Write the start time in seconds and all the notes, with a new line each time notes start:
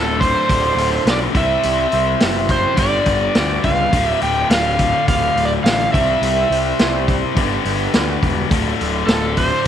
Already playing: D1 D2 A2 D3 A3 D4 F4 A4 C5
0.15 A3 D4 F4 B4
0.20 C5, kick, open hi-hat
0.47 D1 A3 D4 F4 A4, kick, open hi-hat
0.75 D1 A3 D4 A4, open hi-hat
0.79 F4
1.05 B1 A3 D4 F4 A4, snare, open hi-hat
1.10 D5
1.33 C2 C3 G3 C4 E4 G4 C5, kick, open hi-hat
1.37 E5
1.63 C2, open hi-hat
1.92 C2 C4 E4 G4 C5, open hi-hat
2.20 F#1 C4 E4 G4 B4, snare, open hi-hat
2.49 C4 C5, kick, open hi-hat
2.53 E4 G4 C5
2.75 G1 G2 D3 G3 B3 D4 G4 B4 D5, kick, open hi-hat
3.05 G1 B3 D4 G4 D5, kick, open hi-hat
3.35 D2 B3 D4 G4 D5, snare, open hi-hat
3.63 C#2 B3 F5, kick, open hi-hat
3.68 D4 G4 B4
3.91 D1 D2 A2 D3 A3, kick, open hi-hat
3.95 D4 F4 A4
4.07 E5
4.21 D1 G5, open hi-hat
4.26 A3 D4 F4 B4
4.50 D1 A3 D4 F4 G4 F5, snare, open hi-hat
4.79 A3, kick, open hi-hat
4.83 D4 F4 A4
5.08 D1 F5, kick, open hi-hat
5.12 A3 D4 F4 B4
5.36 D1 A3 D4 F4, open hi-hat
5.40 A4
5.45 D5
5.64 A1 F5, snare, open hi-hat
5.69 A3 D4 F4 A4
5.93 C2 C3 G3 C4 E4 C5 E5, kick, open hi-hat
5.97 G4
6.22 C2, open hi-hat
6.50 C2 C4 E4 G4 C5, open hi-hat
6.79 C2 C4 E4 G4 C5, snare, open hi-hat
7.08 C4 E4 G4 C5, kick, open hi-hat
7.35 G1 G2 D3 G3 B3 D4 G4 B4, kick, open hi-hat
7.65 G1 B3 D4 G4 B4, open hi-hat
7.93 D2 B3 D4 G4 B4, snare, open hi-hat
8.20 E1 B3 D4 G4 B4, kick, open hi-hat
8.48 D1 D2 A2 A3 D4 F4 A4, kick, open hi-hat
8.52 D3
8.78 D1 A3 D4 F4 A4, open hi-hat
9.05 D1 A3 D4 F4 A4, snare, open hi-hat
9.35 A3 D4 F4 C5, kick, open hi-hat
9.63 A3 D4 F4